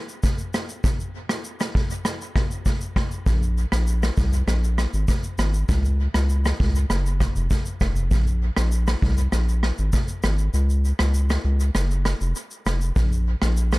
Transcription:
0.09 shaker
0.23 kick, shaker
0.38 shaker
0.54 cross-stick, shaker
0.69 shaker
0.84 kick, shaker
1.00 shaker
1.29 cross-stick, shaker
1.44 shaker
1.60 cross-stick, shaker
1.75 kick
1.90 shaker
2.05 cross-stick, shaker
2.21 shaker
2.36 kick, cross-stick
2.51 shaker
2.66 kick, shaker
2.81 shaker
2.96 kick, cross-stick
3.11 shaker
3.26 analog synth bass A#1, kick, shaker
3.43 shaker
3.58 shaker
3.72 analog synth bass A#1, cross-stick, shaker
3.87 shaker
4.03 cross-stick, shaker
4.17 analog synth bass C2, kick, shaker
4.33 shaker
4.47 analog synth bass A#1, cross-stick, shaker
4.64 shaker
4.78 cross-stick, shaker
4.94 analog synth bass G#1, shaker
5.08 kick, shaker
5.23 shaker
5.38 analog synth bass G#1, cross-stick, shaker
5.54 shaker
5.69 analog synth bass C#2, kick, shaker
5.85 shaker
6.14 analog synth bass C#2, cross-stick, shaker
6.29 shaker
6.45 cross-stick, shaker
6.60 analog synth bass C#2, kick
6.75 shaker
6.90 analog synth bass F#1, cross-stick, shaker
7.06 shaker
7.20 kick, cross-stick, shaker
7.36 analog synth bass F1, shaker
7.50 kick, shaker
7.66 shaker
7.81 analog synth bass F1, kick, cross-stick, shaker
7.96 shaker
8.11 analog synth bass A#1, kick, shaker
8.27 shaker
8.56 analog synth bass A#1, cross-stick, shaker
8.72 shaker
8.87 cross-stick, shaker
9.02 analog synth bass C2, kick
9.18 shaker
9.32 analog synth bass A#1, cross-stick, shaker
9.49 shaker
9.63 cross-stick
9.78 analog synth bass G#1, shaker
9.93 kick, shaker
10.08 shaker
10.23 analog synth bass G#1, cross-stick, shaker
10.38 shaker
10.54 analog synth bass C#2, shaker
10.70 shaker
10.85 shaker
10.99 analog synth bass C#2, cross-stick, shaker
11.14 shaker
11.30 cross-stick, shaker
11.45 analog synth bass C#2
11.60 shaker
11.75 analog synth bass F#1, cross-stick, shaker
11.91 shaker
12.05 cross-stick, shaker
12.21 analog synth bass F1, shaker
12.36 shaker
12.51 shaker
12.66 analog synth bass F1, cross-stick, shaker
12.81 shaker
12.96 analog synth bass A#1, kick, shaker
13.12 shaker
13.42 analog synth bass A#1, cross-stick, shaker
13.57 shaker
13.72 cross-stick, shaker

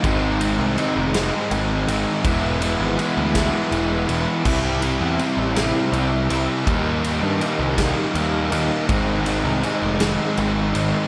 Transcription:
0.02 picked electric bass G#1, distorted electric guitar G#2 D#3 G#3 C4 D#4, string machine D#4 G#4 C5 G#5, kick, ride
0.39 distorted electric guitar G#3 C4 D#4, ride
0.59 picked electric bass C2
0.77 distorted electric guitar D#3 G#3 C4 D#4, ride
0.96 picked electric bass F1
1.13 overdriven electric guitar G#2 D#3, distorted electric guitar G#3 C4 D#4, snare, ride
1.50 picked electric bass G#1, distorted electric guitar D#3 G#3 C4 D#4, ride
1.88 picked electric bass G#1, distorted electric guitar G#3 C4 D#4, ride
2.24 picked electric bass E1, distorted electric guitar E3 G#3 B3 E4, string machine E4 G#4 B4 G#5, kick, ride
2.61 distorted electric guitar G#3 B3 E4, ride
2.80 picked electric bass G#1
2.98 distorted electric guitar E3 G#3 B3 E4, ride
3.17 picked electric bass D2
3.34 overdriven electric guitar E3, distorted electric guitar G#3 B3 E4, kick, snare, ride
3.71 picked electric bass E1, distorted electric guitar E3 G#3 B3 E4, ride
4.09 picked electric bass E1, distorted electric guitar G#3 B3 E4, ride
4.45 picked electric bass C2, distorted electric guitar C3 G3 C4 E4, string machine G4 C5 G5, kick, crash
4.82 distorted electric guitar G3 C4 E4, ride
5.01 picked electric bass E2
5.18 distorted electric guitar C3 G3 C4 E4, ride
5.37 picked electric bass A1
5.56 overdriven electric guitar C3, distorted electric guitar G3 C4 E4, snare, ride
5.92 picked electric bass C2, distorted electric guitar C3 G3 C4 E4, ride
6.30 picked electric bass C2, distorted electric guitar G3 C4 E4, ride
6.66 picked electric bass D#2, distorted electric guitar D#3 G3 A#3 D#4, string machine D#4 A#4, kick, ride
7.03 distorted electric guitar G3 A#3 D#4, ride
7.22 picked electric bass G2
7.40 distorted electric guitar D#3 G3 A#3 D#4, ride
7.59 picked electric bass C2
7.77 overdriven electric guitar D#3, distorted electric guitar G3 A#3 D#4, kick, snare, ride
8.14 picked electric bass D#2, distorted electric guitar D#3 G3 A#3 D#4, ride
8.51 picked electric bass D#2, distorted electric guitar G3 A#3 D#4, ride
8.88 picked electric bass G#1, distorted electric guitar G#2 D#3 G#3 C4 D#4, string machine G#4 C5 G#5, kick, ride
9.25 distorted electric guitar G#3 C4 D#4, ride
9.45 picked electric bass C2
9.62 distorted electric guitar D#3 G#3 C4 D#4, ride
9.82 picked electric bass F1
9.99 overdriven electric guitar G#2 D#3, distorted electric guitar G#3 C4 D#4, snare, ride
10.37 picked electric bass G#1, distorted electric guitar D#3 G#3 C4 D#4, ride
10.75 picked electric bass G#1, distorted electric guitar G#3 C4 D#4, ride

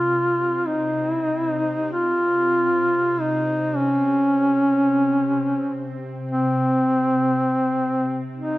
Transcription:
Already playing: ambient pad C3, duduk F4
0.66 duduk D#4
1.11 duduk E4
1.23 duduk D#4
1.36 duduk E4
1.48 duduk D#4
1.92 duduk F4
3.20 duduk D#4
3.76 duduk C#4
6.31 duduk C4
8.36 duduk D#4

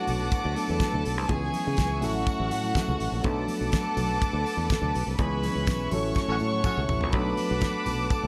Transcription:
Already playing: tine electric piano F#3 A3 B3 D4 E4 A4 C#5, violin section F#4 F#5, string section B4 F#5 A5 D6
0.07 fingered electric bass B1, open hi-hat, tambourine, high conga, low conga
0.32 kick, closed hi-hat, tambourine
0.45 fingered electric bass D2, muted conga
0.56 tine electric piano F#3 A3 B3 D4 A4, violin section A4 A5, open hi-hat, tambourine
0.68 fingered electric bass E2, high conga
0.80 kick, snare, closed hi-hat, tambourine, muted conga, high conga
0.93 fingered electric bass D2, low conga
1.05 fingered electric bass B1, open hi-hat, tambourine
1.17 fingered electric bass C2
1.29 fingered electric bass C#2, tine electric piano E3 G#3 B3 C#4 G#4, violin section G#4 G#5, string section E5 G#5 C#6, kick, closed hi-hat, muted conga
1.42 muted conga
1.53 open hi-hat, tambourine, high conga
1.67 fingered electric bass C#3
1.77 fingered electric bass C#2, kick, snare, closed hi-hat, tambourine, muted conga, high conga
1.90 muted conga
2.00 tine electric piano F#3 A3 C#4 E4 A4, violin section F#4 F#5, string section A4 F#5, open hi-hat, tambourine, high conga, low conga
2.04 fingered electric bass A1
2.26 kick, closed hi-hat, tambourine, muted conga
2.40 fingered electric bass A1
2.51 fingered electric bass A2, open hi-hat, tambourine
2.63 high conga
2.75 kick, snare, closed hi-hat, tambourine, muted conga, high conga
2.88 fingered electric bass C#2, low conga
3.00 fingered electric bass A1, open hi-hat
3.12 fingered electric bass A#1
3.22 fingered electric bass B1, tine electric piano F#3 A3 B3 D4 A4, violin section A4 A5, string section B4 F#5 A5 D6, kick, closed hi-hat, tambourine, muted conga
3.48 open hi-hat, tambourine, high conga
3.61 fingered electric bass B1
3.72 kick, snare, closed hi-hat, tambourine, high conga
3.84 muted conga
3.97 fingered electric bass B1, open hi-hat, tambourine, high conga, low conga
4.21 kick, closed hi-hat, tambourine, muted conga
4.33 fingered electric bass D2
4.46 open hi-hat, tambourine
4.57 fingered electric bass E2, high conga
4.70 kick, snare, closed hi-hat, tambourine, muted conga, high conga
4.82 fingered electric bass D2, muted conga, low conga
4.94 fingered electric bass B1, open hi-hat, tambourine
5.07 fingered electric bass C2
5.18 fingered electric bass C#2, tine electric piano E3 G#3 B3 C#4 G#4, violin section B4 B5, string section E5 G#5 C#6, kick, closed hi-hat
5.31 muted conga
5.43 open hi-hat, tambourine, high conga
5.55 fingered electric bass C#2
5.67 fingered electric bass B1, kick, snare, closed hi-hat, tambourine, high conga
5.79 muted conga
5.90 fingered electric bass A1, tine electric piano F#3 A3 C#4, string section A4 F#5, violin section C#5 C#6, open hi-hat, tambourine, high conga, low conga
5.94 tine electric piano E4 A4
6.15 kick, snare, tambourine
6.28 fingered electric bass A1, horn section C#4 F#4 A4 C#5, muted conga
6.40 fingered electric bass A2, tambourine
6.52 high conga
6.64 horn section C#4 F#4 A4 C#5, kick, mid tom, tambourine, muted conga, high conga
6.77 fingered electric bass C#2, muted conga, low conga
6.88 fingered electric bass A1, floor tom, tambourine, low conga
7.01 fingered electric bass A#1, floor tom
7.12 fingered electric bass B1, tine electric piano F#3 A3 B3 D4 A4, violin section B4 B5, string section B4 A5 D6, kick, closed hi-hat
7.26 muted conga
7.37 open hi-hat, tambourine, high conga
7.51 fingered electric bass B1
7.61 kick, snare, closed hi-hat, tambourine, muted conga, high conga
7.74 muted conga
7.86 fingered electric bass B1, open hi-hat, tambourine, high conga, low conga
8.10 violin section A4 A5, kick, closed hi-hat, tambourine, muted conga
8.23 fingered electric bass D2, muted conga

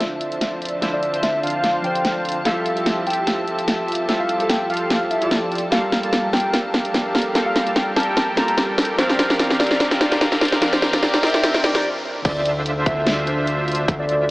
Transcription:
Already playing: supersaw synth D3 D4 F4 C5 E5, synth keys F3 D4 E4 C5 E5, string section F3 C4 D4 A5
0.00 snare, closed hi-hat
0.21 closed hi-hat
0.32 closed hi-hat
0.41 snare, closed hi-hat
0.62 closed hi-hat
0.65 closed hi-hat
0.69 closed hi-hat
0.81 supersaw synth D3 D4 F4 C5 E5, synth keys F3 D4 E4 C5, snare, closed hi-hat
0.93 soft synth lead D5
1.03 closed hi-hat
1.12 synth keys F3 D4 C5, closed hi-hat
1.23 soft synth lead E5, snare, closed hi-hat
1.43 supersaw synth D3 D4 F4 C5 F5, soft synth lead F5, closed hi-hat
1.47 closed hi-hat
1.50 closed hi-hat
1.64 snare, closed hi-hat
1.82 synth keys F3 D4, soft synth lead G5, closed hi-hat
1.86 synth keys C5
1.95 closed hi-hat
2.05 snare, closed hi-hat
2.25 closed hi-hat
2.29 closed hi-hat
2.32 closed hi-hat
2.44 supersaw synth F3 F4 G4 A4 E5, string section F3 G4, synth keys G3 E4 F4 A4, soft synth lead F5, snare, closed hi-hat
2.66 closed hi-hat
2.75 synth keys G3 F4 E5, closed hi-hat
2.79 synth keys A4
2.86 snare, closed hi-hat
3.07 supersaw synth F3 F4 G4 A4 E5, soft synth lead G5, closed hi-hat
3.10 closed hi-hat
3.13 closed hi-hat
3.27 snare, closed hi-hat
3.48 closed hi-hat
3.59 closed hi-hat
3.68 snare, closed hi-hat
3.88 closed hi-hat
3.92 closed hi-hat
3.95 closed hi-hat
4.08 supersaw synth F3 F4 G4 A4 E5, synth keys G3 E4 F4 A4, snare, closed hi-hat
4.20 soft synth lead F5
4.29 closed hi-hat
4.38 synth keys G3 F4 A4, closed hi-hat
4.49 soft synth lead G5, snare, closed hi-hat
4.70 supersaw synth F3 F4 G4 A4 F5, soft synth lead F5, closed hi-hat
4.74 closed hi-hat
4.77 closed hi-hat
4.90 snare, closed hi-hat
5.11 soft synth lead E5, closed hi-hat
5.19 supersaw synth F3 F4 G4 A4 D5, synth keys G3 E4 F4, closed hi-hat
5.23 synth keys A4
5.31 snare, closed hi-hat
5.51 supersaw synth F3 F4 G4 A4 D5, closed hi-hat
5.55 closed hi-hat
5.58 closed hi-hat
5.71 synth keys G3 A#3 F4 A4, supersaw synth G3 G4 A4 A#4 F5, string section A#3 D4 G4, soft synth lead F5, snare, closed hi-hat, riser
5.92 snare, closed hi-hat
6.01 synth keys G3 A#3 F4, closed hi-hat
6.05 synth keys A5
6.13 snare, closed hi-hat
6.33 supersaw synth G3 G4 A4 A#4 F5, soft synth lead G5, snare, closed hi-hat
6.37 closed hi-hat
6.40 closed hi-hat
6.54 snare, closed hi-hat
6.74 snare, closed hi-hat
6.85 closed hi-hat
6.94 snare, closed hi-hat
7.15 snare, closed hi-hat
7.18 closed hi-hat
7.22 closed hi-hat
7.34 synth keys G3 A#3 F4 A4, supersaw synth G3 G4 A4 A#4 F5, snare, closed hi-hat
7.46 soft synth lead F5
7.56 snare, closed hi-hat
7.65 synth keys G3 A#3 F4, closed hi-hat
7.69 synth keys A5
7.76 soft synth lead G5, snare, closed hi-hat
7.96 supersaw synth G3 G4 A4 A#4 G5, soft synth lead A5, snare, closed hi-hat
8.00 closed hi-hat
8.03 closed hi-hat
8.17 snare, closed hi-hat
8.35 synth keys G3 A#3 F4 A5, soft synth lead A#5, snare, closed hi-hat
8.48 closed hi-hat
8.58 snare, closed hi-hat
8.78 snare, closed hi-hat
8.82 closed hi-hat
8.85 closed hi-hat
8.97 synth keys F3 C4 D4 A#4, string section C4 D4 A#4, supersaw synth C4 G4 A#4 D5 F5, soft synth lead C5, snare, closed hi-hat
9.09 snare
9.19 snare, closed hi-hat
9.28 synth keys F3 C4 D4 A#4, snare, closed hi-hat
9.39 snare, closed hi-hat
9.50 snare
9.60 supersaw synth C4 G4 A#4 D5 F5, soft synth lead D5, snare, closed hi-hat
9.63 closed hi-hat
9.67 closed hi-hat
9.71 snare
9.80 snare, closed hi-hat
9.91 snare
10.01 snare, closed hi-hat
10.12 snare, closed hi-hat
10.21 snare, closed hi-hat
10.32 snare
10.41 snare, closed hi-hat
10.45 closed hi-hat
10.48 closed hi-hat
10.52 snare
10.61 synth keys F3 C4 D4 A#4, supersaw synth C4 G4 A#4 D5 F5, snare, closed hi-hat
10.73 soft synth lead C5, snare
10.82 snare, closed hi-hat
10.91 synth keys F3 C4 D4, snare, closed hi-hat
10.95 synth keys A#4
11.03 soft synth lead D5, snare, closed hi-hat
11.14 snare
11.23 supersaw synth C4 G4 A#4 D5 G5, soft synth lead E5, snare, closed hi-hat
11.27 closed hi-hat
11.30 closed hi-hat
11.34 snare
11.44 snare, closed hi-hat
11.54 snare
11.64 soft synth lead D5, snare, closed hi-hat
11.73 synth keys F3 C4 D4, snare, closed hi-hat
11.77 synth keys A#4
12.25 analog synth bass D2, supersaw synth D3 D4 F4 C5 E5, soft synth lead D5, kick, closed hi-hat, crash
12.45 closed hi-hat
12.66 closed hi-hat
12.86 analog synth bass D2, supersaw synth D3 D4 F4 C5 E5, soft synth lead E5, kick, closed hi-hat
13.07 snare, closed hi-hat
13.27 closed hi-hat
13.47 closed hi-hat
13.68 closed hi-hat
13.72 closed hi-hat
13.75 closed hi-hat
13.88 analog synth bass D2, supersaw synth D3 D4 F4 C5 E5, kick, closed hi-hat
13.99 soft synth lead D5
14.09 closed hi-hat

